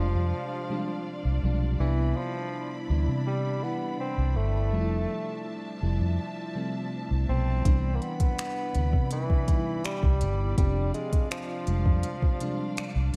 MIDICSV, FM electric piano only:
0, 0, Header, 1, 2, 480
1, 0, Start_track
1, 0, Tempo, 731707
1, 1179, Time_signature, 4, 2, 24, 8
1, 8633, End_track
2, 0, Start_track
2, 0, Title_t, "FM electric piano"
2, 0, Program_c, 0, 5
2, 0, Control_c, 0, 64, 127
2, 0, Note_on_c, 0, 48, 66
2, 0, Note_on_c, 0, 53, 60
2, 0, Note_on_c, 0, 55, 60
2, 0, Note_on_c, 0, 56, 59
2, 0, Note_on_c, 0, 62, 74
2, 0, Note_on_c, 0, 67, 77
2, 303, Note_off_c, 0, 48, 0
2, 305, Note_off_c, 0, 53, 0
2, 307, Note_off_c, 0, 55, 0
2, 308, Note_off_c, 0, 56, 0
2, 310, Note_off_c, 0, 62, 0
2, 458, Note_on_c, 0, 48, 83
2, 461, Note_on_c, 0, 53, 73
2, 464, Note_on_c, 0, 55, 72
2, 467, Note_on_c, 0, 56, 74
2, 471, Note_on_c, 0, 62, 88
2, 784, Note_off_c, 0, 48, 0
2, 785, Note_off_c, 0, 53, 0
2, 787, Note_off_c, 0, 55, 0
2, 789, Note_off_c, 0, 56, 0
2, 790, Note_off_c, 0, 62, 0
2, 938, Note_on_c, 0, 48, 75
2, 942, Note_on_c, 0, 53, 70
2, 944, Note_on_c, 0, 55, 71
2, 948, Note_on_c, 0, 56, 66
2, 952, Note_on_c, 0, 62, 81
2, 1101, Note_off_c, 0, 48, 0
2, 1103, Note_off_c, 0, 53, 0
2, 1104, Note_off_c, 0, 55, 0
2, 1106, Note_off_c, 0, 56, 0
2, 1108, Note_off_c, 0, 62, 0
2, 1179, Note_on_c, 0, 48, 86
2, 1182, Note_on_c, 0, 64, 81
2, 1185, Note_on_c, 0, 55, 77
2, 1188, Control_c, 0, 64, 0
2, 1188, Note_on_c, 0, 59, 79
2, 1192, Note_on_c, 0, 62, 100
2, 1193, Note_off_c, 0, 67, 0
2, 1286, Control_c, 0, 64, 127
2, 1667, Note_off_c, 0, 48, 0
2, 1668, Note_off_c, 0, 64, 0
2, 1670, Note_off_c, 0, 55, 0
2, 1671, Note_off_c, 0, 59, 0
2, 1673, Note_off_c, 0, 62, 0
2, 1897, Note_on_c, 0, 48, 68
2, 1900, Note_on_c, 0, 52, 60
2, 1903, Note_on_c, 0, 55, 56
2, 1906, Note_on_c, 0, 59, 61
2, 1909, Note_on_c, 0, 64, 72
2, 2223, Note_off_c, 0, 48, 0
2, 2225, Note_off_c, 0, 52, 0
2, 2226, Note_off_c, 0, 55, 0
2, 2228, Note_off_c, 0, 59, 0
2, 2229, Note_off_c, 0, 64, 0
2, 2378, Note_on_c, 0, 48, 68
2, 2382, Note_on_c, 0, 52, 63
2, 2384, Note_on_c, 0, 55, 63
2, 2387, Note_on_c, 0, 71, 63
2, 2390, Note_on_c, 0, 64, 76
2, 2866, Note_off_c, 0, 48, 0
2, 2868, Note_off_c, 0, 52, 0
2, 2869, Note_off_c, 0, 55, 0
2, 2871, Note_off_c, 0, 71, 0
2, 2873, Note_off_c, 0, 64, 0
2, 3098, Note_on_c, 0, 48, 88
2, 3102, Note_on_c, 0, 53, 82
2, 3105, Note_on_c, 0, 55, 83
2, 3107, Control_c, 0, 64, 0
2, 3108, Note_on_c, 0, 57, 80
2, 3111, Note_on_c, 0, 62, 78
2, 3148, Note_off_c, 0, 62, 0
2, 3153, Note_on_c, 0, 64, 97
2, 3222, Control_c, 0, 64, 127
2, 3587, Note_off_c, 0, 48, 0
2, 3588, Note_off_c, 0, 53, 0
2, 3590, Note_off_c, 0, 55, 0
2, 3591, Note_off_c, 0, 57, 0
2, 3614, Note_off_c, 0, 64, 0
2, 3818, Note_on_c, 0, 48, 73
2, 3821, Note_on_c, 0, 53, 73
2, 3824, Note_on_c, 0, 55, 69
2, 3827, Note_on_c, 0, 57, 72
2, 3831, Note_on_c, 0, 64, 87
2, 4144, Note_off_c, 0, 48, 0
2, 4145, Note_off_c, 0, 53, 0
2, 4147, Note_off_c, 0, 55, 0
2, 4149, Note_off_c, 0, 57, 0
2, 4150, Note_off_c, 0, 64, 0
2, 4298, Note_on_c, 0, 48, 84
2, 4301, Note_on_c, 0, 53, 74
2, 4305, Note_on_c, 0, 55, 72
2, 4309, Note_on_c, 0, 57, 73
2, 4311, Note_on_c, 0, 60, 85
2, 4624, Note_off_c, 0, 48, 0
2, 4626, Note_off_c, 0, 53, 0
2, 4627, Note_off_c, 0, 55, 0
2, 4629, Note_off_c, 0, 57, 0
2, 4630, Note_off_c, 0, 60, 0
2, 4780, Note_on_c, 0, 48, 64
2, 4782, Note_on_c, 0, 53, 58
2, 4786, Note_on_c, 0, 55, 59
2, 4789, Note_on_c, 0, 57, 57
2, 4792, Note_on_c, 0, 59, 66
2, 4942, Note_off_c, 0, 48, 0
2, 4943, Note_off_c, 0, 53, 0
2, 4945, Note_off_c, 0, 55, 0
2, 4947, Note_off_c, 0, 57, 0
2, 4948, Note_off_c, 0, 59, 0
2, 5018, Note_on_c, 0, 48, 87
2, 5021, Note_on_c, 0, 52, 79
2, 5025, Note_on_c, 0, 55, 78
2, 5027, Note_on_c, 0, 59, 81
2, 5028, Control_c, 0, 64, 0
2, 5031, Note_on_c, 0, 62, 102
2, 5143, Control_c, 0, 64, 127
2, 5506, Note_off_c, 0, 48, 0
2, 5508, Note_off_c, 0, 52, 0
2, 5510, Note_off_c, 0, 55, 0
2, 5511, Note_off_c, 0, 59, 0
2, 5513, Note_off_c, 0, 62, 0
2, 5739, Note_on_c, 0, 48, 64
2, 5742, Note_on_c, 0, 52, 58
2, 5744, Note_on_c, 0, 55, 60
2, 5749, Note_on_c, 0, 59, 59
2, 5751, Note_on_c, 0, 62, 69
2, 6064, Note_off_c, 0, 48, 0
2, 6066, Note_off_c, 0, 52, 0
2, 6067, Note_off_c, 0, 55, 0
2, 6069, Note_off_c, 0, 59, 0
2, 6070, Note_off_c, 0, 62, 0
2, 6217, Note_on_c, 0, 48, 69
2, 6221, Note_on_c, 0, 52, 64
2, 6223, Note_on_c, 0, 55, 62
2, 6226, Note_on_c, 0, 59, 63
2, 6230, Note_on_c, 0, 63, 59
2, 6267, Note_off_c, 0, 63, 0
2, 6273, Note_on_c, 0, 64, 76
2, 6706, Note_off_c, 0, 48, 0
2, 6708, Note_off_c, 0, 52, 0
2, 6709, Note_off_c, 0, 55, 0
2, 6711, Note_off_c, 0, 59, 0
2, 6734, Note_off_c, 0, 64, 0
2, 6936, Note_on_c, 0, 48, 88
2, 6940, Note_on_c, 0, 53, 80
2, 6943, Note_on_c, 0, 67, 84
2, 6946, Note_on_c, 0, 60, 82
2, 6947, Control_c, 0, 64, 0
2, 6948, Note_on_c, 0, 62, 100
2, 7048, Control_c, 0, 64, 127
2, 7425, Note_off_c, 0, 48, 0
2, 7427, Note_off_c, 0, 53, 0
2, 7429, Note_off_c, 0, 67, 0
2, 7430, Note_off_c, 0, 60, 0
2, 7432, Note_off_c, 0, 62, 0
2, 7659, Note_on_c, 0, 48, 64
2, 7661, Note_on_c, 0, 53, 63
2, 7665, Note_on_c, 0, 55, 63
2, 7668, Note_on_c, 0, 56, 57
2, 7670, Note_on_c, 0, 62, 76
2, 7984, Note_off_c, 0, 48, 0
2, 7985, Note_off_c, 0, 53, 0
2, 7987, Note_off_c, 0, 55, 0
2, 7989, Note_off_c, 0, 56, 0
2, 7990, Note_off_c, 0, 62, 0
2, 8138, Note_on_c, 0, 48, 85
2, 8141, Note_on_c, 0, 53, 75
2, 8144, Note_on_c, 0, 55, 76
2, 8148, Note_on_c, 0, 56, 74
2, 8150, Note_on_c, 0, 62, 95
2, 8464, Note_off_c, 0, 48, 0
2, 8465, Note_off_c, 0, 53, 0
2, 8467, Note_off_c, 0, 55, 0
2, 8469, Note_off_c, 0, 56, 0
2, 8470, Note_off_c, 0, 62, 0
2, 8633, End_track
0, 0, End_of_file